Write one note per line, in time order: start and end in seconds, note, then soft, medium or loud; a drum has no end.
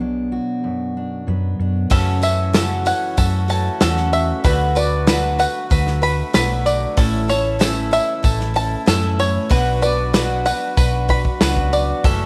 0.00 0.37 B1 medium
0.00 1.91 B2 medium
0.00 1.26 F#3 medium
0.00 1.27 B3 soft
0.00 0.96 D4 medium
0.00 0.32 G#4 soft
0.32 4.45 F#4 medium
0.64 4.44 F#2 medium
0.97 1.59 D4 soft
1.27 1.53 F#2 medium
1.27 1.87 F#3 medium
1.27 1.87 B3 medium
1.59 1.84 F#2 medium
1.59 1.88 D4 medium
1.90 2.22 F#2 medium
1.90 2.91 F#2 medium
1.90 2.22 C#3 loud
1.90 2.23 E3 loud
1.90 4.42 E3 medium
1.90 9.47 A3 medium
1.90 2.23 A3 medium
1.90 4.42 C#4 medium
1.90 2.22 C#4 medium
1.90 6.94 F#4 medium
1.90 2.20 F#4 medium
1.90 2.54 A4 medium
1.90 kick loud
1.90 open hi-hat medium
2.22 2.54 E3 medium
2.22 2.54 A3 medium
2.22 2.54 C#4 medium
2.22 2.54 F#4 medium
2.22 3.50 E5 medium
2.22 open hi-hat soft
2.22 tambourine medium
2.53 2.86 F#2 medium
2.53 2.86 C#3 medium
2.53 2.86 E3 medium
2.53 2.86 A3 medium
2.53 2.85 C#4 medium
2.53 2.84 F#4 medium
2.53 3.17 A4 medium
2.53 snare loud
2.53 open hi-hat medium
2.53 tambourine loud
2.85 3.16 E3 soft
2.85 3.17 A3 medium
2.85 3.18 C#4 medium
2.85 3.17 F#4 medium
2.85 4.13 F#5 medium
2.85 open hi-hat medium
2.85 tambourine medium
3.17 3.68 F#2 medium
3.17 3.49 E3 medium
3.17 3.49 A3 medium
3.17 3.48 C#4 medium
3.17 3.47 F#4 medium
3.17 3.80 A4 medium
3.17 kick loud
3.17 open hi-hat medium
3.17 tambourine medium
3.48 3.80 E3 soft
3.48 3.81 A3 soft
3.48 3.81 C#4 medium
3.48 3.81 F#4 medium
3.48 4.45 A5 medium
3.48 open hi-hat medium
3.48 tambourine soft
3.80 4.31 E2 loud
3.80 4.44 F#2 medium
3.80 4.43 C#3 medium
3.80 4.44 E3 medium
3.80 4.45 A3 medium
3.80 4.45 C#4 medium
3.80 4.44 F#4 loud
3.80 4.45 A4 medium
3.80 snare loud
3.80 open hi-hat medium
3.80 tambourine loud
3.97 snare soft
4.13 4.44 E5 medium
4.13 open hi-hat soft
4.13 tambourine medium
4.44 5.45 D2 loud
4.44 4.76 D3 medium
4.44 6.95 D3 medium
4.44 4.76 F#3 medium
4.44 4.76 A3 loud
4.44 6.95 B3 medium
4.44 4.76 F#4 loud
4.44 5.07 B4 medium
4.44 4.74 B4 loud
4.44 kick loud
4.44 open hi-hat medium
4.75 5.07 A3 medium
4.75 5.07 F#4 medium
4.75 5.07 B4 medium
4.75 6.03 D5 medium
4.75 open hi-hat medium
4.75 tambourine medium
5.07 5.39 D3 medium
5.07 5.39 F#3 medium
5.07 5.39 A3 medium
5.07 5.39 F#4 loud
5.07 5.70 B4 medium
5.07 5.38 B4 medium
5.07 snare loud
5.07 open hi-hat medium
5.07 tambourine medium
5.39 5.70 A3 soft
5.39 5.71 F#4 medium
5.39 5.71 B4 medium
5.39 6.66 F#5 medium
5.39 open hi-hat medium
5.39 tambourine medium
5.70 6.21 D2 loud
5.70 6.02 F#3 medium
5.70 6.03 A3 medium
5.70 6.02 F#4 medium
5.70 6.33 B4 medium
5.70 6.01 B4 medium
5.70 kick loud
5.70 open hi-hat medium
5.70 tambourine medium
5.87 snare soft
6.02 6.33 A3 soft
6.02 6.34 F#4 medium
6.02 6.34 B4 medium
6.02 6.98 B5 medium
6.02 open hi-hat medium
6.02 tambourine soft
6.33 6.84 B1 medium
6.33 6.97 D3 medium
6.33 6.97 F#3 medium
6.33 6.96 A3 medium
6.33 6.98 F#4 medium
6.33 6.97 B4 medium
6.33 6.98 B4 loud
6.33 snare loud
6.33 open hi-hat medium
6.33 tambourine loud
6.66 6.97 D5 medium
6.66 open hi-hat soft
6.66 tambourine medium
6.97 7.97 A1 loud
6.97 7.29 A2 loud
6.97 9.48 C#3 medium
6.97 7.29 E3 loud
6.97 9.48 E3 medium
6.97 7.29 A3 medium
6.97 7.29 C#4 loud
6.97 9.48 E4 medium
6.97 7.28 E4 loud
6.97 7.60 A4 medium
6.97 7.27 A4 loud
6.97 kick loud
6.97 open hi-hat medium
7.28 7.59 A3 medium
7.28 7.60 C#4 medium
7.28 7.60 E4 medium
7.28 7.60 A4 medium
7.28 8.56 C#5 medium
7.28 open hi-hat medium
7.28 tambourine medium
7.59 7.92 A2 medium
7.59 7.92 E3 medium
7.59 7.92 A3 medium
7.59 7.92 C#4 medium
7.59 7.91 E4 loud
7.59 8.23 A4 medium
7.59 7.90 A4 medium
7.59 snare loud
7.59 open hi-hat medium
7.59 tambourine loud
7.91 8.21 A3 medium
7.91 8.23 C#4 medium
7.91 8.24 E4 medium
7.91 8.23 A4 medium
7.91 9.19 E5 medium
7.91 open hi-hat medium
7.91 tambourine medium
8.23 8.74 A1 loud
8.23 8.55 A3 medium
8.23 8.55 C#4 medium
8.23 8.54 E4 medium
8.23 8.87 A4 medium
8.23 8.53 A4 medium
8.23 kick loud
8.23 open hi-hat medium
8.23 tambourine medium
8.40 snare soft
8.54 8.86 A3 soft
8.54 8.87 C#4 medium
8.54 8.87 E4 medium
8.54 8.86 A4 medium
8.54 9.51 A5 medium
8.54 open hi-hat medium
8.54 tambourine soft
8.86 9.38 F#2 loud
8.86 9.50 A2 medium
8.86 9.49 E3 medium
8.86 9.50 A3 medium
8.86 9.50 C#4 medium
8.86 9.51 E4 medium
8.86 9.51 A4 medium
8.86 snare loud
8.86 open hi-hat medium
8.86 tambourine loud
9.19 9.51 C#5 medium
9.19 open hi-hat soft
9.19 tambourine medium
9.49 10.51 B1 loud
9.49 9.82 B2 loud
9.49 12.01 F#3 medium
9.49 9.82 F#3 loud
9.49 12.02 B3 medium
9.49 12.01 D4 medium
9.49 9.82 D4 medium
9.49 12.26 F#4 medium
9.49 9.82 F#4 medium
9.49 10.13 B4 medium
9.49 9.80 B4 medium
9.49 kick loud
9.49 open hi-hat medium
9.49 tambourine soft
9.82 10.14 D4 medium
9.82 10.15 F#4 medium
9.82 10.14 B4 medium
9.82 11.09 D5 medium
9.82 open hi-hat soft
9.82 tambourine medium
10.13 10.45 B2 medium
10.13 10.46 F#3 medium
10.13 10.46 D4 medium
10.13 10.46 F#4 loud
10.13 10.76 B4 medium
10.13 10.44 B4 loud
10.13 snare loud
10.13 open hi-hat medium
10.13 tambourine loud
10.45 10.77 D4 medium
10.45 10.78 F#4 medium
10.45 10.77 B4 medium
10.45 11.72 F#5 medium
10.45 open hi-hat medium
10.45 tambourine medium
10.77 11.28 B1 medium
10.77 11.09 F#3 medium
10.77 11.09 D4 medium
10.77 11.09 F#4 medium
10.77 11.40 B4 medium
10.77 11.07 B4 medium
10.77 kick loud
10.77 open hi-hat medium
10.77 tambourine medium
11.08 11.40 D4 medium
11.08 11.41 F#4 medium
11.08 11.40 B4 medium
11.08 12.05 B5 medium
11.08 kick medium
11.08 open hi-hat medium
11.08 tambourine soft
11.25 kick medium
11.41 11.91 C#2 medium
11.41 12.04 B2 medium
11.41 12.05 F#3 medium
11.41 12.05 D4 medium
11.41 12.05 F#4 medium
11.41 12.04 B4 medium
11.41 12.05 B4 medium
11.41 snare loud
11.41 open hi-hat medium
11.41 tambourine loud
11.57 kick medium
11.73 12.04 D5 medium
11.73 open hi-hat soft
11.73 tambourine medium
12.04 12.26 F#1 loud
12.04 12.26 F#2 medium
12.04 12.26 C#3 medium
12.04 12.26 E3 loud
12.04 12.26 E3 medium
12.04 12.26 A3 medium
12.04 12.26 C#4 medium
12.04 12.26 A4 medium
12.04 kick loud
12.04 open hi-hat medium